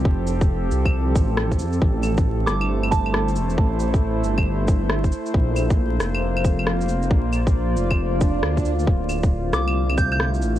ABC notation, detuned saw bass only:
X:1
M:4/4
L:1/8
Q:"Swing 16ths" 1/4=136
K:Aphr
V:1 name="Detuned saw bass" clef=bass
F,,,3 C,,2 A,,,2 F,, | A,,,3 G,,,4 E,,, | A,,,3 G,,,4 z | B,,,3 F,,,4 F,,, |
B,,,3 F,,,3 D,,2 | D,,,3 C,,4 A,,, |]